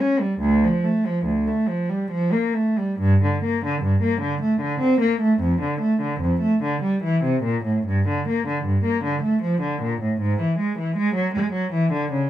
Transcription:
0.00 0.21 C#4 medium
0.20 0.42 G3 medium
0.40 0.62 D2 medium
0.64 0.85 F3 medium
0.84 1.05 A3 medium
1.06 1.27 F3 medium
1.26 1.47 D2 medium
1.47 1.69 A3 medium
1.68 1.90 F3 medium
1.89 2.11 G3 medium
2.11 2.32 F3 medium
2.32 2.55 A#3 medium
2.54 2.78 A3 medium
2.78 3.01 G3 medium
3.00 3.22 G2 medium
3.24 3.44 D3 medium
3.44 3.63 A#3 medium
3.66 3.84 D3 medium
3.83 4.02 G2 medium
4.02 4.22 A#3 medium
4.21 4.41 D3 medium
4.42 4.61 A3 medium
4.61 4.81 D3 medium
4.81 5.01 C4 medium
5.00 5.21 A#3 medium
5.21 5.41 A3 medium
5.40 5.60 F2 medium
5.61 5.81 D3 medium
5.81 6.00 A3 medium
6.01 6.21 D3 medium
6.21 6.41 F2 medium
6.41 6.61 A3 medium
6.63 6.82 D3 medium
6.83 7.02 G3 medium
7.04 7.23 E3 medium
7.24 7.44 C3 medium
7.44 7.64 A#2 medium
7.65 7.85 A2 medium
7.87 8.06 G2 medium
8.09 8.27 D3 medium
8.28 8.46 A#3 medium
8.47 8.65 D3 medium
8.65 8.84 G2 medium
8.84 9.03 A#3 medium
9.04 9.23 D3 medium
9.22 9.42 A3 medium
9.43 9.62 F3 medium
9.61 9.81 D3 medium
9.82 10.01 A#2 medium
10.01 10.20 A2 medium
10.21 10.40 G#2 medium
10.40 10.59 E3 medium
10.59 10.78 G#3 medium
10.79 10.97 E3 medium
10.97 11.16 G#3 medium
11.15 11.34 F#3 medium
11.34 11.53 G#3 medium
11.53 11.72 F#3 medium
11.73 11.92 E3 medium
11.93 12.12 D3 medium
12.12 12.30 C#3 medium

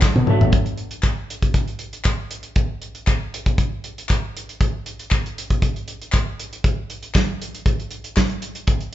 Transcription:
0.00 0.23 B2 medium
0.00 0.50 D3 medium
0.00 0.24 F#3 medium
0.00 0.52 A3 medium
0.00 0.52 B3 medium
0.00 0.24 D4 medium
0.00 0.50 F#4 medium
0.00 0.25 A4 medium
0.00 muted clean electric guitar stroke soft
0.00 kick loud
0.00 snare medium
0.00 clap loud
0.15 0.24 B2 medium
0.15 muted clean electric guitar stroke soft
0.15 high tom medium
0.26 0.52 B2 medium
0.26 0.53 F#3 medium
0.26 0.42 B3 medium
0.26 0.53 D4 medium
0.26 0.42 F#4 medium
0.26 0.53 A4 medium
0.26 0.41 A4 medium
0.26 0.40 E5 medium
0.26 mid tom medium
0.41 0.49 A1 medium
0.41 0.55 B3 medium
0.41 0.54 F#4 medium
0.41 0.54 A4 medium
0.41 0.54 E5 medium
0.41 floor tom loud
0.52 kick loud
0.52 closed hi-hat medium
0.66 closed hi-hat soft
0.78 closed hi-hat soft
0.91 closed hi-hat soft
1.03 kick medium
1.03 clap medium
1.03 closed hi-hat medium
1.30 closed hi-hat medium
1.42 kick medium
1.42 closed hi-hat soft
1.54 kick medium
1.54 closed hi-hat medium
1.68 closed hi-hat soft
1.79 closed hi-hat medium
1.93 closed hi-hat soft
2.04 kick medium
2.04 clap medium
2.04 closed hi-hat medium
2.31 closed hi-hat medium
2.43 closed hi-hat soft
2.56 kick loud
2.56 closed hi-hat medium
2.82 closed hi-hat soft
2.95 closed hi-hat soft
3.07 kick loud
3.07 clap medium
3.07 closed hi-hat medium
3.34 closed hi-hat medium
3.46 kick medium
3.46 closed hi-hat soft
3.58 kick medium
3.58 closed hi-hat medium
3.84 closed hi-hat medium
3.98 closed hi-hat soft
4.09 kick medium
4.09 clap medium
4.09 closed hi-hat medium
4.37 closed hi-hat medium
4.49 closed hi-hat soft
4.61 kick medium
4.61 closed hi-hat medium
4.86 closed hi-hat medium
4.99 closed hi-hat soft
5.11 kick loud
5.11 clap medium
5.11 closed hi-hat medium
5.26 closed hi-hat soft
5.38 closed hi-hat medium
5.50 kick medium
5.50 closed hi-hat soft
5.62 kick medium
5.62 closed hi-hat medium
5.76 closed hi-hat soft
5.88 closed hi-hat medium
6.02 closed hi-hat soft
6.12 kick loud
6.12 clap medium
6.12 closed hi-hat medium
6.40 closed hi-hat medium
6.53 closed hi-hat soft
6.64 kick loud
6.64 closed hi-hat medium
6.90 closed hi-hat soft
7.03 closed hi-hat soft
7.14 kick loud
7.14 snare medium
7.14 clap medium
7.42 closed hi-hat medium
7.55 closed hi-hat soft
7.66 kick loud
7.66 closed hi-hat medium
7.80 closed hi-hat soft
7.91 closed hi-hat medium
8.04 closed hi-hat soft
8.16 kick medium
8.16 snare medium
8.16 clap medium
8.29 closed hi-hat soft
8.42 closed hi-hat medium
8.55 closed hi-hat soft
8.67 kick loud
8.67 closed hi-hat medium
8.80 closed hi-hat soft

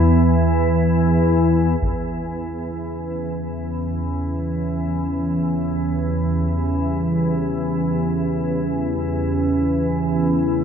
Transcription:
0.00 1.81 E2 medium
0.00 1.82 E3 medium
1.80 10.64 E2 medium
1.80 10.64 E3 medium
1.80 10.64 C#4 medium
1.80 taiko medium
3.42 10.64 E4 medium
4.39 10.64 G4 medium

